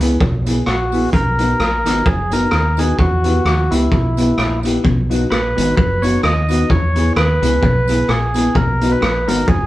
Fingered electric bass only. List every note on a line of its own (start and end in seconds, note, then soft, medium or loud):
0.00 0.17 C#2 medium
0.21 0.60 B1 loud
0.67 1.06 A#1 medium
1.13 1.53 B1 loud
1.59 1.85 A#1 medium
1.85 2.02 G#1 medium
2.06 2.46 F#1 medium
2.52 2.92 D#2 medium
2.99 3.38 E2 loud
3.45 3.67 D#2 medium
3.71 3.89 C#2 medium
3.92 4.31 B1 medium
4.38 4.77 A#1 medium
4.85 5.24 B1 loud
5.31 5.53 A#1 medium
5.58 5.75 G#1 medium
5.78 6.17 F#1 loud
6.23 6.63 D#2 medium
6.70 7.09 E2 loud
7.16 7.38 D#2 medium
7.42 7.59 C#2 medium
7.63 8.02 B1 medium
8.09 8.48 A#1 medium
8.55 8.95 B1 loud
9.02 9.28 A#1 medium
9.28 9.45 G#1 medium
9.48 9.67 F#1 medium